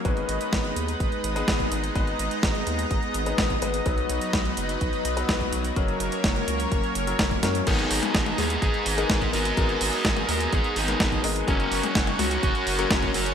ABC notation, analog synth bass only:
X:1
M:4/4
L:1/8
Q:1/4=126
K:G#m
V:1 name="Analog synth bass" clef=bass
G,,, G,,, G,,, D,, G,,, G,,, G,,, G,,, | G,,, G,,, G,,, D,, G,,, G,,, G,,, G,,, | B,,, B,,, B,,, F,,, B,,, B,,, B,,, B,,, | F,,, F,,, F,,, C,, F,,, F,,, F,,, F,, |
G,,, G,,, G,,, D,, G,,, G,,, G,,, G,,, | G,,, G,,, G,,, D,, G,,, G,,, G,,, G,,, | F,,, F,,, F,,, C,, F,,, F,,, F,,, F,,, |]